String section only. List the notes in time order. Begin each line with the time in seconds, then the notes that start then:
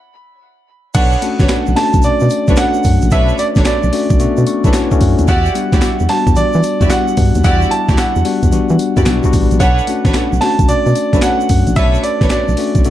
0.95 D4 A4 B4 C#5
1.40 D4 A4 B4 C#5
2.48 D4 A4 B4 C#5
3.11 D4 A4 B4 C#5
3.57 D4 A4 B4 C#5
4.65 D4 A4 B4 C#5
5.28 E4 F#4 G4 D5
5.72 E4 F#4 G4 D5
6.80 E4 F#4 G4 D5
7.44 E4 F#4 G4 D5
7.89 E4 F#4 G4 D5
8.97 E4 F#4 G4 D5
9.60 D4 A4 B4 C#5
10.05 D4 A4 B4 C#5
11.13 D4 A4 B4 C#5
11.77 D4 A4 B4 C#5
12.22 D4 A4 B4 C#5